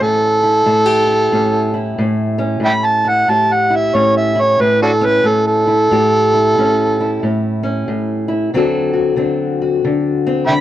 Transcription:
0.00 0.65 A2 medium
0.00 0.68 E3 medium
0.00 0.89 C#4 medium
0.00 0.43 E4 soft
0.00 0.66 G4 medium
0.00 1.94 A4 medium
0.43 0.66 E4 medium
0.66 1.32 A2 medium
0.66 0.86 E4 medium
0.86 3.28 G4 medium
1.07 1.73 E4 soft
1.32 1.98 A2 medium
1.32 2.38 C#4 medium
1.74 3.04 E4 soft
1.98 2.59 A2 medium
2.38 3.32 C#4 medium
2.60 3.28 A2 medium
2.65 2.71 E5 medium
2.65 2.72 G5 medium
2.65 2.87 B5 loud
2.85 3.10 A5 medium
3.05 3.70 E4 medium
3.05 3.31 F#5 medium
3.28 3.94 A2 medium
3.28 5.88 G4 medium
3.28 3.54 A5 medium
3.53 3.77 F#5 medium
3.70 4.35 E4 medium
3.75 3.97 E5 medium
3.95 4.59 A2 medium
3.95 5.00 C#4 medium
3.95 4.16 C#5 medium
4.17 4.42 E5 medium
4.36 5.66 E4 medium
4.41 4.62 C#5 medium
4.60 5.22 A2 medium
4.60 4.81 B4 medium
4.82 4.91 D4 medium
4.82 4.91 F#4 medium
4.82 5.07 A4 medium
5.01 5.88 C#4 medium
5.06 5.29 B4 medium
5.24 5.90 A2 medium
5.24 5.46 A4 medium
5.47 7.39 A4 medium
5.67 5.88 E4 medium
5.91 6.56 A2 medium
5.91 8.50 G4 medium
6.33 6.98 E4 medium
6.58 7.22 A2 medium
6.58 7.62 C#4 medium
7.01 8.27 E4 medium
7.23 7.87 A2 medium
7.63 8.50 C#4 medium
7.88 8.53 A2 medium
8.28 8.49 E4 medium
8.54 9.16 D3 medium
8.54 10.61 F#3 medium
8.54 9.17 C4 medium
8.54 8.93 F#4 medium
8.54 10.61 A4 medium
8.93 9.61 F#4 medium
9.16 9.84 D3 medium
9.16 10.24 C4 medium
9.62 10.61 F#4 soft
9.84 10.47 D3 medium
10.26 10.61 C4 medium
10.47 10.61 D3 medium
10.47 10.54 E5 medium
10.47 10.54 G5 medium
10.47 10.61 B5 loud

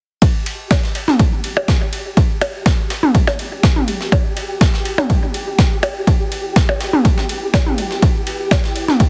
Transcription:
0.22 9.09 E4 medium
0.22 9.09 G4 medium
0.22 kick loud
0.22 ride medium
0.46 ride medium
0.62 9.09 B4 medium
0.71 kick loud
0.71 snare loud
0.71 ride medium
0.71 percussion blips medium
0.84 snare soft
0.95 ride medium
1.08 snare soft
1.08 high tom medium
1.19 kick loud
1.19 ride medium
1.26 9.09 G5 medium
1.44 ride medium
1.57 percussion blips medium
1.68 kick loud
1.68 snare loud
1.68 ride medium
1.93 ride medium
2.17 kick loud
2.17 ride medium
2.41 ride medium
2.41 percussion blips medium
2.66 kick loud
2.66 snare loud
2.66 ride medium
2.90 snare medium
2.90 ride medium
3.03 high tom medium
3.15 kick loud
3.15 ride medium
3.27 snare medium
3.27 percussion blips medium
3.39 ride medium
3.63 kick loud
3.63 snare loud
3.63 ride medium
3.76 high tom soft
3.88 ride medium
4.01 snare soft
4.12 kick loud
4.12 ride medium
4.12 percussion blips medium
4.37 ride medium
4.61 kick loud
4.61 snare loud
4.61 ride medium
4.74 snare soft
4.85 ride medium
4.98 snare soft
4.98 high tom medium
4.98 percussion blips medium
5.10 kick loud
5.10 ride medium
5.34 ride medium
5.59 kick loud
5.59 snare loud
5.59 ride medium
5.83 ride medium
5.83 percussion blips medium
6.07 kick loud
6.07 ride medium
6.32 ride medium
6.56 kick loud
6.56 snare loud
6.56 ride medium
6.69 percussion blips medium
6.81 snare medium
6.81 ride medium
6.93 high tom medium
7.05 kick loud
7.05 ride medium
7.18 snare medium
7.29 ride medium
7.54 kick loud
7.54 snare loud
7.54 ride medium
7.54 percussion blips medium
7.66 high tom medium
7.78 ride medium
7.91 snare soft
8.02 kick loud
8.02 ride medium
8.27 ride medium
8.51 kick loud
8.51 snare loud
8.51 ride medium
8.51 percussion blips medium
8.64 snare soft
8.76 ride medium
8.88 snare soft
8.88 high tom medium
9.00 kick loud
9.00 ride medium

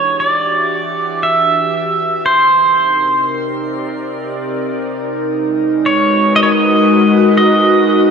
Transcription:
0.00 2.28 E3 medium
0.00 2.27 D4 medium
0.00 2.28 F#4 medium
0.00 3.50 G4 medium
0.00 0.43 B4 medium
0.00 0.20 C#5 medium
0.00 2.27 E5 medium
0.00 0.42 F#5 medium
0.20 1.23 D5 medium
1.23 2.25 E5 medium
2.26 5.35 C3 medium
2.26 3.25 C5 medium
2.47 8.11 D#4 medium
2.47 8.11 A#4 medium
2.59 5.34 C4 medium
3.27 5.34 D5 medium
5.35 8.11 G#3 medium
5.60 8.11 B4 medium
5.80 8.11 F#4 medium
5.86 6.36 C#5 loud
6.36 6.42 D#5 medium
6.43 6.49 C#5 medium
6.52 7.36 D#5 medium
7.37 8.11 D#5 medium

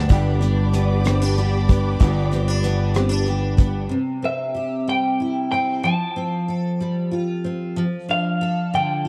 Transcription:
0.00 0.73 B3 medium
0.00 0.40 D4 medium
0.00 0.10 G4 medium
0.09 1.96 G1 loud
0.09 0.41 G2 medium
0.09 1.98 G2 medium
0.09 0.41 D3 medium
0.09 0.41 G3 medium
0.09 0.41 B3 medium
0.09 0.41 D4 medium
0.09 0.40 G4 medium
0.09 1.37 G4 medium
0.09 3.88 G4 medium
0.09 3.88 D5 medium
0.09 3.88 B5 medium
0.09 3.88 D6 medium
0.09 kick loud
0.09 closed hi-hat medium
0.41 0.72 G3 soft
0.41 0.72 B3 medium
0.41 1.04 D4 medium
0.41 0.73 D4 medium
0.41 0.73 G4 medium
0.41 closed hi-hat soft
0.73 1.04 G3 medium
0.73 1.67 B3 medium
0.73 1.04 B3 medium
0.73 1.04 D4 medium
0.73 1.04 G4 medium
0.73 closed hi-hat medium
1.04 1.38 G2 medium
1.04 1.38 D3 medium
1.04 1.36 G3 medium
1.04 1.36 B3 medium
1.04 1.22 C4 medium
1.04 1.37 D4 medium
1.04 1.37 G4 medium
1.04 cross-stick medium
1.04 closed hi-hat medium
1.22 2.31 D4 soft
1.37 1.69 G3 medium
1.37 1.69 B3 medium
1.37 1.68 D4 medium
1.37 2.00 G4 medium
1.37 1.67 G4 medium
1.37 closed hi-hat soft
1.69 1.99 G3 soft
1.69 2.62 B3 soft
1.69 1.99 B3 soft
1.69 2.00 D4 soft
1.69 2.00 G4 medium
1.69 kick medium
1.69 closed hi-hat medium
2.00 3.87 G1 loud
2.00 2.31 G2 medium
2.00 3.91 G2 medium
2.00 2.32 D3 medium
2.00 2.32 G3 medium
2.00 2.31 B3 medium
2.00 2.31 D4 medium
2.00 3.25 G4 medium
2.00 2.30 G4 medium
2.00 kick loud
2.00 closed hi-hat medium
2.31 2.62 G3 soft
2.31 2.62 B3 medium
2.31 2.48 C4 medium
2.31 2.63 D4 soft
2.31 2.63 G4 medium
2.31 closed hi-hat soft
2.48 2.94 D4 soft
2.63 2.95 G3 soft
2.63 3.56 B3 medium
2.63 2.95 B3 medium
2.63 2.95 D4 medium
2.63 2.94 G4 medium
2.63 closed hi-hat medium
2.94 3.28 G2 medium
2.94 3.28 D3 medium
2.94 3.26 G3 medium
2.94 3.27 B3 medium
2.94 3.09 C4 soft
2.94 3.27 D4 medium
2.94 3.27 G4 medium
2.94 cross-stick medium
2.94 closed hi-hat medium
3.09 3.97 D4 soft
3.26 3.59 G3 soft
3.26 3.59 B3 soft
3.26 3.58 D4 soft
3.26 4.54 G4 soft
3.26 3.57 G4 medium
3.26 closed hi-hat soft
3.57 3.92 G3 soft
3.57 3.97 B3 soft
3.57 3.92 B3 soft
3.57 3.91 D4 soft
3.57 3.91 G4 soft
3.57 kick medium
3.57 closed hi-hat medium
3.89 5.83 C3 medium
4.22 5.52 C4 soft
4.22 4.89 E5 medium
4.55 5.91 G4 soft
4.88 5.91 G3 soft
4.88 5.50 G5 medium
5.20 5.91 E4 soft
5.52 5.91 C4 soft
5.52 5.84 G5 medium
5.83 7.75 F3 medium
5.83 6.53 A5 medium
6.16 7.43 C4 soft
6.48 8.41 A4 soft
6.81 7.84 G3 soft
7.11 7.83 F4 soft
7.44 7.83 C4 soft
7.76 9.08 F3 medium
8.09 9.08 D4 soft
8.09 8.75 F5 medium
8.41 9.08 A4 medium
8.73 9.08 D3 medium
8.73 9.08 G5 medium
9.05 9.08 F4 soft

